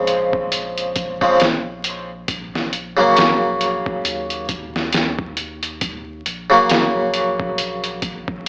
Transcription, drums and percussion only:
0.07 closed hi-hat
0.33 kick
0.52 closed hi-hat
0.78 closed hi-hat
0.96 kick, closed hi-hat
1.22 kick
1.40 snare, closed hi-hat
1.84 closed hi-hat
2.28 kick, closed hi-hat
2.55 snare
2.73 closed hi-hat
3.17 snare, closed hi-hat
3.61 closed hi-hat
3.86 kick
4.05 closed hi-hat
4.30 closed hi-hat
4.49 kick, closed hi-hat
4.76 snare
4.93 snare, closed hi-hat
5.19 kick
5.37 closed hi-hat
5.63 closed hi-hat
5.81 kick, closed hi-hat
6.26 closed hi-hat
6.69 snare, closed hi-hat
7.14 closed hi-hat
7.40 kick
7.58 closed hi-hat
7.84 closed hi-hat
8.02 kick, closed hi-hat
8.28 kick

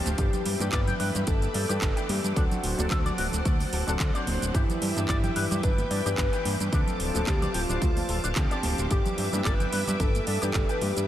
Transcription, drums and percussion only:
0.06 closed hi-hat, shaker
0.18 kick, closed hi-hat, shaker
0.33 closed hi-hat, low conga, shaker
0.46 open hi-hat
0.60 closed hi-hat, high conga, shaker
0.72 kick, clap, closed hi-hat, shaker
0.88 closed hi-hat, low conga, shaker
1.00 open hi-hat
1.15 closed hi-hat, low conga, shaker
1.27 kick, closed hi-hat, shaker
1.42 closed hi-hat, high conga, shaker
1.54 open hi-hat
1.70 closed hi-hat, shaker
1.81 kick, clap, closed hi-hat, shaker
1.97 closed hi-hat, shaker
2.09 open hi-hat, high conga
2.24 closed hi-hat, shaker
2.36 kick, closed hi-hat, shaker
2.51 closed hi-hat, low conga, shaker
2.64 open hi-hat
2.79 closed hi-hat, high conga, shaker
2.91 kick, clap, closed hi-hat, shaker
3.06 closed hi-hat, low conga, shaker
3.18 open hi-hat
3.32 closed hi-hat, low conga, shaker
3.45 kick, closed hi-hat, shaker
3.60 open hi-hat, high conga, shaker
3.73 open hi-hat
3.88 closed hi-hat, shaker
3.99 kick, clap, closed hi-hat, shaker
4.15 closed hi-hat, shaker
4.27 open hi-hat, high conga
4.42 closed hi-hat, shaker
4.55 kick, closed hi-hat, shaker
4.70 closed hi-hat, low conga, shaker
4.82 open hi-hat
4.96 closed hi-hat, high conga, shaker
5.08 kick, clap, closed hi-hat, shaker
5.24 closed hi-hat, low conga, shaker
5.36 open hi-hat
5.51 closed hi-hat, low conga, shaker
5.63 kick, closed hi-hat, shaker
5.78 closed hi-hat, high conga, shaker
5.91 open hi-hat
6.06 closed hi-hat, shaker
6.18 kick, clap, closed hi-hat, shaker
6.33 closed hi-hat, shaker
6.45 open hi-hat, high conga
6.60 closed hi-hat, shaker
6.73 kick, closed hi-hat, shaker
6.87 closed hi-hat, low conga, shaker
7.00 open hi-hat
7.15 closed hi-hat, high conga, shaker
7.27 kick, clap, closed hi-hat, shaker
7.42 closed hi-hat, low conga, shaker
7.54 open hi-hat
7.69 closed hi-hat, low conga, shaker
7.82 kick, closed hi-hat, shaker
7.97 open hi-hat, high conga, shaker
8.09 open hi-hat
8.24 closed hi-hat, shaker
8.35 kick, clap, closed hi-hat, shaker
8.51 closed hi-hat, shaker
8.63 open hi-hat, high conga
8.78 closed hi-hat, shaker
8.91 kick, closed hi-hat, shaker
9.06 closed hi-hat, low conga, shaker
9.18 open hi-hat
9.33 closed hi-hat, high conga, shaker
9.45 kick, clap, closed hi-hat, shaker
9.60 closed hi-hat, low conga, shaker
9.72 open hi-hat
9.87 closed hi-hat, low conga, shaker
10.00 kick, closed hi-hat, shaker
10.15 closed hi-hat, high conga, shaker
10.27 open hi-hat
10.42 closed hi-hat, shaker
10.54 kick, clap, closed hi-hat, shaker
10.69 closed hi-hat, shaker
10.81 open hi-hat, high conga
10.96 closed hi-hat, shaker

